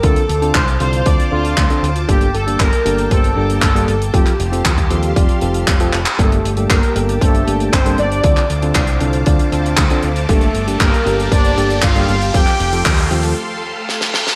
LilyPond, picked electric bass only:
\new Staff \with { instrumentName = "Picked electric bass" } { \clef bass \time 4/4 \key g \minor \tempo 4 = 117 d,8 d,8 c,8 c,8 d,8 d,8 d,8 d,8 | g,,8 g,,8 g,,8 g,,8 g,,8 g,,8 g,,8 g,,8 | f,,8 f,,8 ees,8 ees,8 f,,8 f,,8 f,,8 f,,8 | g,,8 g,,8 g,,8 g,,8 g,,8 g,,8 g,,8 g,,8 |
d,8 d,8 c,8 c,8 d,8 d,8 d,8 d,8 | g,,8 g,,8 g,,8 g,,8 g,,8 g,,8 g,,8 g,,8 | f,,8 f,,8 ees,8 ees,8 r2 | }